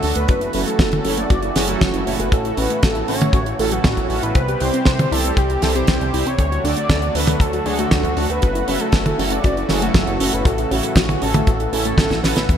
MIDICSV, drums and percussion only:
0, 0, Header, 1, 2, 480
1, 0, Start_track
1, 0, Key_signature, 3, "major"
1, 0, Tempo, 508475
1, 270, Time_signature, 4, 2, 24, 8
1, 11871, End_track
2, 0, Start_track
2, 0, Title_t, "Drums"
2, 24, Note_on_c, 9, 46, 102
2, 118, Note_off_c, 9, 46, 0
2, 146, Note_on_c, 9, 42, 73
2, 241, Note_off_c, 9, 42, 0
2, 267, Note_on_c, 9, 42, 64
2, 272, Note_on_c, 9, 36, 123
2, 362, Note_off_c, 9, 42, 0
2, 366, Note_off_c, 9, 36, 0
2, 390, Note_on_c, 9, 42, 43
2, 484, Note_off_c, 9, 42, 0
2, 502, Note_on_c, 9, 46, 104
2, 597, Note_off_c, 9, 46, 0
2, 639, Note_on_c, 9, 42, 69
2, 733, Note_off_c, 9, 42, 0
2, 746, Note_on_c, 9, 36, 127
2, 750, Note_on_c, 9, 38, 127
2, 750, Note_on_c, 9, 42, 61
2, 840, Note_off_c, 9, 36, 0
2, 844, Note_off_c, 9, 42, 0
2, 845, Note_off_c, 9, 38, 0
2, 865, Note_on_c, 9, 42, 47
2, 877, Note_on_c, 9, 48, 55
2, 960, Note_off_c, 9, 42, 0
2, 971, Note_off_c, 9, 48, 0
2, 988, Note_on_c, 9, 46, 110
2, 1082, Note_off_c, 9, 46, 0
2, 1109, Note_on_c, 9, 42, 67
2, 1203, Note_off_c, 9, 42, 0
2, 1229, Note_on_c, 9, 36, 127
2, 1229, Note_on_c, 9, 42, 74
2, 1324, Note_off_c, 9, 36, 0
2, 1324, Note_off_c, 9, 42, 0
2, 1345, Note_on_c, 9, 42, 45
2, 1439, Note_off_c, 9, 42, 0
2, 1469, Note_on_c, 9, 46, 113
2, 1473, Note_on_c, 9, 38, 68
2, 1563, Note_off_c, 9, 46, 0
2, 1567, Note_off_c, 9, 38, 0
2, 1583, Note_on_c, 9, 42, 67
2, 1677, Note_off_c, 9, 42, 0
2, 1711, Note_on_c, 9, 42, 73
2, 1713, Note_on_c, 9, 36, 123
2, 1713, Note_on_c, 9, 38, 122
2, 1806, Note_off_c, 9, 42, 0
2, 1807, Note_off_c, 9, 36, 0
2, 1807, Note_off_c, 9, 38, 0
2, 1828, Note_on_c, 9, 42, 50
2, 1922, Note_off_c, 9, 42, 0
2, 1955, Note_on_c, 9, 46, 112
2, 2049, Note_off_c, 9, 46, 0
2, 2074, Note_on_c, 9, 42, 68
2, 2168, Note_off_c, 9, 42, 0
2, 2191, Note_on_c, 9, 36, 127
2, 2192, Note_on_c, 9, 42, 66
2, 2285, Note_off_c, 9, 36, 0
2, 2287, Note_off_c, 9, 42, 0
2, 2313, Note_on_c, 9, 42, 42
2, 2407, Note_off_c, 9, 42, 0
2, 2429, Note_on_c, 9, 46, 97
2, 2523, Note_off_c, 9, 46, 0
2, 2551, Note_on_c, 9, 42, 68
2, 2646, Note_off_c, 9, 42, 0
2, 2668, Note_on_c, 9, 42, 67
2, 2672, Note_on_c, 9, 36, 127
2, 2673, Note_on_c, 9, 38, 127
2, 2763, Note_off_c, 9, 42, 0
2, 2766, Note_off_c, 9, 36, 0
2, 2767, Note_off_c, 9, 38, 0
2, 2785, Note_on_c, 9, 42, 50
2, 2879, Note_off_c, 9, 42, 0
2, 2908, Note_on_c, 9, 46, 104
2, 3003, Note_off_c, 9, 46, 0
2, 3028, Note_on_c, 9, 42, 71
2, 3037, Note_on_c, 9, 48, 65
2, 3122, Note_off_c, 9, 42, 0
2, 3131, Note_off_c, 9, 48, 0
2, 3144, Note_on_c, 9, 36, 122
2, 3147, Note_on_c, 9, 42, 73
2, 3238, Note_off_c, 9, 36, 0
2, 3241, Note_off_c, 9, 42, 0
2, 3269, Note_on_c, 9, 42, 47
2, 3363, Note_off_c, 9, 42, 0
2, 3393, Note_on_c, 9, 46, 103
2, 3487, Note_off_c, 9, 46, 0
2, 3508, Note_on_c, 9, 42, 65
2, 3602, Note_off_c, 9, 42, 0
2, 3625, Note_on_c, 9, 48, 62
2, 3629, Note_on_c, 9, 38, 121
2, 3630, Note_on_c, 9, 36, 124
2, 3630, Note_on_c, 9, 42, 66
2, 3720, Note_off_c, 9, 48, 0
2, 3723, Note_off_c, 9, 38, 0
2, 3724, Note_off_c, 9, 36, 0
2, 3724, Note_off_c, 9, 42, 0
2, 3749, Note_on_c, 9, 36, 69
2, 3750, Note_on_c, 9, 42, 47
2, 3843, Note_off_c, 9, 36, 0
2, 3844, Note_off_c, 9, 42, 0
2, 3870, Note_on_c, 9, 46, 98
2, 3964, Note_off_c, 9, 46, 0
2, 3996, Note_on_c, 9, 42, 63
2, 4090, Note_off_c, 9, 42, 0
2, 4106, Note_on_c, 9, 42, 62
2, 4109, Note_on_c, 9, 36, 121
2, 4201, Note_off_c, 9, 42, 0
2, 4203, Note_off_c, 9, 36, 0
2, 4233, Note_on_c, 9, 42, 45
2, 4327, Note_off_c, 9, 42, 0
2, 4346, Note_on_c, 9, 46, 94
2, 4441, Note_off_c, 9, 46, 0
2, 4473, Note_on_c, 9, 42, 59
2, 4567, Note_off_c, 9, 42, 0
2, 4583, Note_on_c, 9, 38, 114
2, 4589, Note_on_c, 9, 42, 63
2, 4592, Note_on_c, 9, 36, 118
2, 4677, Note_off_c, 9, 38, 0
2, 4684, Note_off_c, 9, 42, 0
2, 4686, Note_off_c, 9, 36, 0
2, 4713, Note_on_c, 9, 48, 67
2, 4715, Note_on_c, 9, 42, 49
2, 4808, Note_off_c, 9, 48, 0
2, 4809, Note_off_c, 9, 42, 0
2, 4837, Note_on_c, 9, 46, 108
2, 4932, Note_off_c, 9, 46, 0
2, 4955, Note_on_c, 9, 42, 66
2, 5049, Note_off_c, 9, 42, 0
2, 5068, Note_on_c, 9, 36, 116
2, 5070, Note_on_c, 9, 42, 62
2, 5163, Note_off_c, 9, 36, 0
2, 5164, Note_off_c, 9, 42, 0
2, 5190, Note_on_c, 9, 42, 45
2, 5284, Note_off_c, 9, 42, 0
2, 5306, Note_on_c, 9, 46, 99
2, 5312, Note_on_c, 9, 38, 57
2, 5401, Note_off_c, 9, 46, 0
2, 5406, Note_off_c, 9, 38, 0
2, 5432, Note_on_c, 9, 42, 68
2, 5527, Note_off_c, 9, 42, 0
2, 5545, Note_on_c, 9, 42, 68
2, 5552, Note_on_c, 9, 38, 114
2, 5553, Note_on_c, 9, 36, 121
2, 5639, Note_off_c, 9, 42, 0
2, 5646, Note_off_c, 9, 38, 0
2, 5647, Note_off_c, 9, 36, 0
2, 5673, Note_on_c, 9, 42, 44
2, 5768, Note_off_c, 9, 42, 0
2, 5795, Note_on_c, 9, 46, 109
2, 5890, Note_off_c, 9, 46, 0
2, 5913, Note_on_c, 9, 42, 61
2, 6008, Note_off_c, 9, 42, 0
2, 6028, Note_on_c, 9, 36, 114
2, 6032, Note_on_c, 9, 42, 63
2, 6122, Note_off_c, 9, 36, 0
2, 6126, Note_off_c, 9, 42, 0
2, 6157, Note_on_c, 9, 42, 45
2, 6252, Note_off_c, 9, 42, 0
2, 6275, Note_on_c, 9, 46, 102
2, 6369, Note_off_c, 9, 46, 0
2, 6387, Note_on_c, 9, 42, 62
2, 6481, Note_off_c, 9, 42, 0
2, 6509, Note_on_c, 9, 36, 113
2, 6511, Note_on_c, 9, 38, 117
2, 6512, Note_on_c, 9, 42, 69
2, 6603, Note_off_c, 9, 36, 0
2, 6605, Note_off_c, 9, 38, 0
2, 6606, Note_off_c, 9, 42, 0
2, 6627, Note_on_c, 9, 42, 43
2, 6722, Note_off_c, 9, 42, 0
2, 6750, Note_on_c, 9, 46, 116
2, 6845, Note_off_c, 9, 46, 0
2, 6867, Note_on_c, 9, 48, 67
2, 6874, Note_on_c, 9, 42, 70
2, 6961, Note_off_c, 9, 48, 0
2, 6968, Note_off_c, 9, 42, 0
2, 6985, Note_on_c, 9, 36, 117
2, 6997, Note_on_c, 9, 42, 67
2, 7079, Note_off_c, 9, 36, 0
2, 7091, Note_off_c, 9, 42, 0
2, 7110, Note_on_c, 9, 42, 42
2, 7204, Note_off_c, 9, 42, 0
2, 7229, Note_on_c, 9, 46, 104
2, 7324, Note_off_c, 9, 46, 0
2, 7352, Note_on_c, 9, 42, 68
2, 7447, Note_off_c, 9, 42, 0
2, 7469, Note_on_c, 9, 38, 121
2, 7470, Note_on_c, 9, 48, 67
2, 7472, Note_on_c, 9, 36, 121
2, 7472, Note_on_c, 9, 42, 61
2, 7564, Note_off_c, 9, 38, 0
2, 7565, Note_off_c, 9, 48, 0
2, 7566, Note_off_c, 9, 42, 0
2, 7567, Note_off_c, 9, 36, 0
2, 7584, Note_on_c, 9, 36, 63
2, 7595, Note_on_c, 9, 42, 48
2, 7679, Note_off_c, 9, 36, 0
2, 7690, Note_off_c, 9, 42, 0
2, 7710, Note_on_c, 9, 46, 98
2, 7805, Note_off_c, 9, 46, 0
2, 7834, Note_on_c, 9, 42, 62
2, 7928, Note_off_c, 9, 42, 0
2, 7949, Note_on_c, 9, 42, 62
2, 7958, Note_on_c, 9, 36, 107
2, 8043, Note_off_c, 9, 42, 0
2, 8052, Note_off_c, 9, 36, 0
2, 8074, Note_on_c, 9, 42, 48
2, 8169, Note_off_c, 9, 42, 0
2, 8192, Note_on_c, 9, 46, 102
2, 8286, Note_off_c, 9, 46, 0
2, 8305, Note_on_c, 9, 42, 65
2, 8399, Note_off_c, 9, 42, 0
2, 8423, Note_on_c, 9, 42, 62
2, 8427, Note_on_c, 9, 36, 113
2, 8428, Note_on_c, 9, 38, 105
2, 8518, Note_off_c, 9, 42, 0
2, 8521, Note_off_c, 9, 36, 0
2, 8522, Note_off_c, 9, 38, 0
2, 8548, Note_on_c, 9, 42, 44
2, 8551, Note_on_c, 9, 48, 62
2, 8643, Note_off_c, 9, 42, 0
2, 8646, Note_off_c, 9, 48, 0
2, 8679, Note_on_c, 9, 46, 119
2, 8774, Note_off_c, 9, 46, 0
2, 8783, Note_on_c, 9, 42, 70
2, 8878, Note_off_c, 9, 42, 0
2, 8911, Note_on_c, 9, 42, 72
2, 8914, Note_on_c, 9, 36, 110
2, 9005, Note_off_c, 9, 42, 0
2, 9008, Note_off_c, 9, 36, 0
2, 9036, Note_on_c, 9, 42, 43
2, 9130, Note_off_c, 9, 42, 0
2, 9146, Note_on_c, 9, 38, 60
2, 9151, Note_on_c, 9, 46, 107
2, 9240, Note_off_c, 9, 38, 0
2, 9246, Note_off_c, 9, 46, 0
2, 9272, Note_on_c, 9, 42, 66
2, 9366, Note_off_c, 9, 42, 0
2, 9387, Note_on_c, 9, 36, 117
2, 9390, Note_on_c, 9, 42, 63
2, 9391, Note_on_c, 9, 38, 121
2, 9482, Note_off_c, 9, 36, 0
2, 9485, Note_off_c, 9, 42, 0
2, 9486, Note_off_c, 9, 38, 0
2, 9509, Note_on_c, 9, 42, 44
2, 9603, Note_off_c, 9, 42, 0
2, 9632, Note_on_c, 9, 46, 119
2, 9726, Note_off_c, 9, 46, 0
2, 9752, Note_on_c, 9, 42, 70
2, 9846, Note_off_c, 9, 42, 0
2, 9868, Note_on_c, 9, 36, 127
2, 9880, Note_on_c, 9, 42, 65
2, 9962, Note_off_c, 9, 36, 0
2, 9974, Note_off_c, 9, 42, 0
2, 9989, Note_on_c, 9, 42, 46
2, 10083, Note_off_c, 9, 42, 0
2, 10114, Note_on_c, 9, 46, 107
2, 10209, Note_off_c, 9, 46, 0
2, 10226, Note_on_c, 9, 42, 69
2, 10321, Note_off_c, 9, 42, 0
2, 10342, Note_on_c, 9, 42, 67
2, 10344, Note_on_c, 9, 36, 114
2, 10352, Note_on_c, 9, 38, 121
2, 10436, Note_off_c, 9, 42, 0
2, 10438, Note_off_c, 9, 36, 0
2, 10446, Note_off_c, 9, 38, 0
2, 10469, Note_on_c, 9, 48, 68
2, 10478, Note_on_c, 9, 42, 48
2, 10563, Note_off_c, 9, 48, 0
2, 10572, Note_off_c, 9, 42, 0
2, 10590, Note_on_c, 9, 46, 110
2, 10684, Note_off_c, 9, 46, 0
2, 10708, Note_on_c, 9, 48, 65
2, 10712, Note_on_c, 9, 42, 74
2, 10803, Note_off_c, 9, 48, 0
2, 10806, Note_off_c, 9, 42, 0
2, 10828, Note_on_c, 9, 42, 68
2, 10830, Note_on_c, 9, 36, 114
2, 10923, Note_off_c, 9, 42, 0
2, 10924, Note_off_c, 9, 36, 0
2, 10950, Note_on_c, 9, 42, 46
2, 11045, Note_off_c, 9, 42, 0
2, 11073, Note_on_c, 9, 46, 109
2, 11167, Note_off_c, 9, 46, 0
2, 11189, Note_on_c, 9, 42, 73
2, 11283, Note_off_c, 9, 42, 0
2, 11306, Note_on_c, 9, 36, 114
2, 11308, Note_on_c, 9, 48, 62
2, 11312, Note_on_c, 9, 38, 111
2, 11317, Note_on_c, 9, 42, 72
2, 11400, Note_off_c, 9, 36, 0
2, 11403, Note_off_c, 9, 48, 0
2, 11406, Note_off_c, 9, 38, 0
2, 11411, Note_off_c, 9, 42, 0
2, 11426, Note_on_c, 9, 36, 66
2, 11431, Note_on_c, 9, 42, 46
2, 11436, Note_on_c, 9, 38, 57
2, 11520, Note_off_c, 9, 36, 0
2, 11525, Note_off_c, 9, 42, 0
2, 11530, Note_off_c, 9, 38, 0
2, 11554, Note_on_c, 9, 38, 78
2, 11556, Note_on_c, 9, 46, 108
2, 11649, Note_off_c, 9, 38, 0
2, 11651, Note_off_c, 9, 46, 0
2, 11667, Note_on_c, 9, 42, 64
2, 11674, Note_on_c, 9, 38, 83
2, 11761, Note_off_c, 9, 42, 0
2, 11769, Note_off_c, 9, 38, 0
2, 11791, Note_on_c, 9, 36, 115
2, 11798, Note_on_c, 9, 42, 64
2, 11871, Note_off_c, 9, 36, 0
2, 11871, Note_off_c, 9, 42, 0
2, 11871, End_track
0, 0, End_of_file